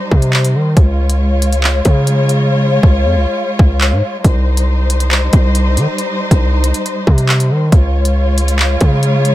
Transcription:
Already playing: string section G3 D#4 C5
0.11 808-style bass C3, kick
0.22 closed hi-hat
0.33 clap
0.45 closed hi-hat
0.55 808-style bass D#3
0.77 808-style bass C#2, string section G#3 F4 C#5, kick, closed hi-hat
1.10 closed hi-hat
1.42 closed hi-hat
1.53 closed hi-hat
1.64 clap
1.85 808-style bass C#3, kick, closed hi-hat
2.07 closed hi-hat
2.29 closed hi-hat
2.83 808-style bass C#2, kick
3.05 808-style bass F2
3.16 808-style bass C#2
3.59 808-style bass C#2, kick
3.81 clap
3.92 808-style bass G#2
4.24 808-style bass C2, string section G3 D#4 C5, kick, closed hi-hat
4.57 closed hi-hat
4.90 closed hi-hat
5.00 closed hi-hat
5.11 clap
5.33 808-style bass C2, kick, closed hi-hat
5.55 closed hi-hat
5.77 808-style bass D#3, closed hi-hat
5.98 closed hi-hat
6.31 808-style bass C2, kick, closed hi-hat
6.64 closed hi-hat
6.74 closed hi-hat
6.86 closed hi-hat
7.07 808-style bass C3, kick
7.18 closed hi-hat
7.29 clap
7.40 closed hi-hat
7.51 808-style bass D#3
7.72 808-style bass C#2, string section G#3 F4 C#5, kick, closed hi-hat
8.05 closed hi-hat
8.38 closed hi-hat
8.48 closed hi-hat
8.59 clap
8.81 808-style bass C#3, kick, closed hi-hat
9.03 closed hi-hat
9.25 closed hi-hat

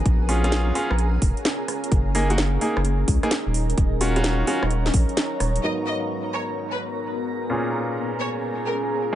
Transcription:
Already playing: ambient pad G#4 A#4 A#5
0.06 sub bass A#1, ambient pad C#4 F4 G#4, kick, closed hi-hat
0.29 grand piano C#4 F4 G#4, open hi-hat
0.44 grand piano C#4 F4 G#4, cross-stick, closed hi-hat
0.52 snare, closed hi-hat
0.75 grand piano C#4 F4 G#4, open hi-hat
0.91 sub bass A#1, cross-stick
0.99 closed hi-hat
1.22 sub bass F1, kick, open hi-hat
1.37 closed hi-hat
1.45 snare, closed hi-hat
1.68 ambient pad C#4 D#4, cross-stick, open hi-hat
1.84 closed hi-hat
1.92 sub bass F#1, kick, closed hi-hat
2.15 grand piano A#3 D#4 G#4, open hi-hat
2.30 grand piano A#3 D#4 F#4, closed hi-hat
2.38 snare, closed hi-hat
2.55 ambient pad A#5
2.61 grand piano A#3 D#4 G#4, open hi-hat
2.77 sub bass F#1, cross-stick
2.85 closed hi-hat
3.08 sub bass C#2, kick, open hi-hat
3.23 grand piano A#3 D#4 G#4, cross-stick, closed hi-hat
3.31 snare, closed hi-hat
3.46 sub bass D#1
3.54 ambient pad F#3 C#4 F5, open hi-hat
3.70 ambient pad C#5, closed hi-hat
3.78 sub bass D#1, kick, closed hi-hat
4.01 grand piano C#4 F4 F#4, open hi-hat
4.16 grand piano C#4 F4 F#4, cross-stick, closed hi-hat
4.24 snare, closed hi-hat
4.47 grand piano C#4 F4 F#4, open hi-hat
4.63 sub bass D#1, cross-stick
4.71 closed hi-hat
4.86 snare
4.94 sub bass A#1, kick, open hi-hat
5.09 closed hi-hat
5.17 snare, closed hi-hat
5.40 sub bass D#1, cross-stick, open hi-hat
5.56 closed hi-hat
5.63 ambient pad G#2 B3 D#4 F#4 A#4, grand piano G#2 B3 D#4 F#4 A#4, violin section D#5
5.87 violin section D#5
6.29 ambient pad G#4
6.33 violin section C#5
6.72 violin section B4
7.50 grand piano A#2 C#4 F4 G#4, ambient pad C#4 F4 G#4
8.19 violin section C#5
8.66 violin section A#4

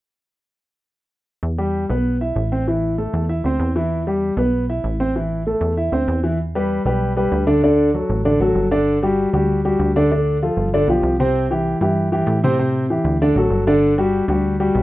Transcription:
1.43 analog synth bass E2
1.58 grand piano G3 G4
1.90 analog synth bass B1, grand piano B3 B4
2.21 grand piano E4 E5
2.36 analog synth bass A1
2.52 grand piano C4 C5
2.68 grand piano E3 E4
2.98 grand piano A3 A4
3.13 analog synth bass E2
3.29 grand piano E4 E5
3.44 analog synth bass D2, grand piano C4 C5
3.59 analog synth bass E2
3.76 grand piano E3 E4
4.07 grand piano G3 G4
4.37 analog synth bass B1, grand piano B3 B4
4.69 grand piano E4 E5
4.84 analog synth bass A1
5.00 grand piano C4 C5
5.16 grand piano E3 E4
5.47 grand piano A3 A4
5.61 analog synth bass E2
5.77 grand piano E4 E5
5.92 analog synth bass D2, grand piano C4 C5
6.08 analog synth bass E2
6.24 grand piano E3 E4
6.55 grand piano G3 G4 B4
6.85 analog synth bass B1, grand piano G3 G4 B4
7.17 grand piano G3 G4 B4
7.32 analog synth bass D2
7.47 grand piano D3 D4 D5
7.63 grand piano D3 D4 D5
7.94 grand piano F#3 F#4 A4
8.09 analog synth bass A1
8.25 grand piano D3 D4 D5
8.40 analog synth bass A1, grand piano F#3 F#4 A4
8.55 analog synth bass G1
8.71 grand piano D3 D4 D5
9.03 grand piano G3 F#4 G4
9.33 analog synth bass D2, grand piano G3 F#4 G4
9.65 grand piano G3 F#4 G4
9.79 analog synth bass D2
9.96 grand piano D3 D4 D5
10.12 grand piano D3 D4 D5
10.43 grand piano F3 F4 A4
10.57 analog synth bass G1
10.74 grand piano D3 D4 D5
10.88 analog synth bass B1, grand piano F3 F4 G4
11.03 analog synth bass C2
11.19 grand piano C3 C4 C5
11.51 grand piano E3 E4 G4
11.81 analog synth bass G2, grand piano E3 E4 G4
12.12 grand piano E3 E4 G4
12.27 analog synth bass A2
12.44 grand piano C3 C4 C5
12.59 grand piano C3 C4 C5
12.90 grand piano E3 E4 G4
13.04 analog synth bass D2
13.22 grand piano D3 D4 D5
13.35 analog synth bass A1, grand piano F#3 F#4 A4
13.51 analog synth bass G1
13.67 grand piano D3 D4 D5
13.98 grand piano G3 F#4 G4
14.28 analog synth bass D2, grand piano G3 F#4 G4
14.60 grand piano G3 F#4 G4
14.75 analog synth bass B1

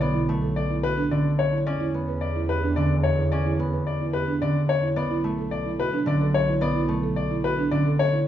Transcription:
Already playing: double bass section B1, harp D3 A3 C#4
0.01 harp B3, grand piano D5
0.14 marimba E4
0.29 harp A3
0.42 marimba A4
0.56 grand piano D5
0.70 marimba E4
0.83 marimba F#4, grand piano B4
0.97 marimba D4
1.11 harp D3, marimba C#4, grand piano D5
1.39 grand piano C#5
1.52 marimba E4
1.66 double bass section E2, harp C#4, grand piano D5
1.80 marimba E4
1.94 harp B3
2.08 marimba B4
2.21 grand piano D5
2.36 marimba E4
2.49 marimba G4, grand piano B4
2.64 marimba D4
2.76 harp D3, grand piano D5
3.03 grand piano C#5
3.18 marimba E4
3.32 harp C#4, grand piano D5
3.46 marimba E4
3.59 harp B3
3.73 marimba B4
3.87 grand piano D5
4.01 marimba E4
4.13 marimba G4, grand piano B4
4.28 marimba D4
4.42 harp D3, marimba C#4, grand piano D5
4.69 grand piano C#5
4.83 marimba E4
4.96 double bass section B1, harp B3, grand piano D5
5.11 marimba E4
5.24 harp A3
5.38 marimba A4
5.51 grand piano D5
5.66 marimba E4
5.79 marimba F#4, grand piano B4
5.93 marimba D4
6.06 harp D3, marimba C#4, grand piano D5
6.21 marimba A4
6.34 grand piano C#5
6.48 marimba E4
6.61 harp B3, grand piano D5
6.76 marimba E4
6.88 harp A3
7.03 marimba A4
7.16 grand piano D5
7.31 marimba E4
7.44 marimba F#4, grand piano B4
7.59 marimba D4
7.71 harp D3, marimba C#4, grand piano D5
7.86 marimba A4
7.99 grand piano C#5
8.13 marimba E4

